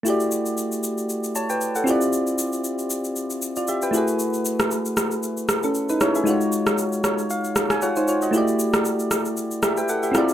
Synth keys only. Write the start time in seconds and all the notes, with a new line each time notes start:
0.03 A3 E4 F#4
0.08 G4 D5
1.36 C#5 A5
1.50 B4 G5
1.76 A4 F#5
1.84 C4 E4 F4
1.89 G4 D5
3.57 F4 D5
3.68 G4 E5
3.83 B4 G5
3.91 A3 E4 F#4
3.96 G#4 B4
5.64 C#4 A4
5.90 D#4 B4
6.01 E4 C#5
6.15 G#4 E5
6.24 G#3 D#4 F4
6.29 F#4 C#5
7.05 C#5
7.31 F5
7.71 G#5
7.82 F4 C#5 F#5
7.97 D#4 C5
8.08 F4 C#5
8.23 F#4 D#5
8.31 A3 E4 F#4
8.36 G4 D5
9.63 G4 E5
9.78 B4 G5
9.89 A4 F#5
10.03 G4 E5
10.12 C4 E4 F4
10.16 G4 D5